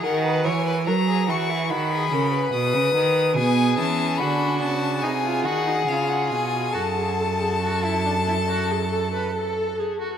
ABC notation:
X:1
M:4/4
L:1/16
Q:1/4=72
K:Bmix
V:1 name="Violin"
f2 g2 ^a2 c'2 b4 d'4 | [K:F#m] g2 a2 b2 a2 g2 _g2 ^e f ^g2 | a12- a2 z2 |]
V:2 name="Violin"
^A B c B A G F E F G A B4- B | [K:F#m] G4 F4 G8 | A12- A2 z2 |]
V:3 name="Viola"
z16 | [K:F#m] B,2 C2 D4 _E ^E _G _E ^E4 | F G A G F E D E F G A B A2 G F |]
V:4 name="Cello" clef=bass
D,2 E,2 F,2 E,2 D,2 C,2 B,, C, D,2 | [K:F#m] B,,2 E,2 D,2 C,2 =C,2 _E,2 ^C,2 B,,2 | F,,12- F,,2 z2 |]